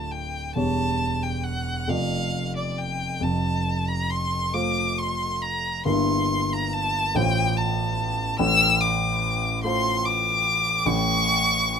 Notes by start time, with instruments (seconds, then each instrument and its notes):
Already playing: grand piano D1 D2 A3 F4 D5, violin A5
0.11 violin G5
0.55 grand piano E1 E2 G3 G4 C#5, violin A5
1.23 violin G5
1.44 violin F#5
1.88 grand piano F1 F2 A3 F4 D5, violin F5
2.56 violin D5
2.78 violin G5
3.20 grand piano F1 F2, violin A5
3.88 violin A#5
4.10 violin C6
4.54 grand piano A3 F4 C5, violin D6
4.99 violin C6
5.42 violin A#5
5.85 grand piano G1 G2 A#3 E4 A#4, violin C6
6.53 violin A#5
6.73 violin A5
7.15 grand piano A1 A2 A3 F4 C5, violin G5
7.57 violin A5
8.39 grand piano A1 A2, violin E6
8.81 violin D6
9.64 grand piano A3 F4 C5, violin C6
10.05 violin D6
10.86 grand piano A1 A2, violin C#6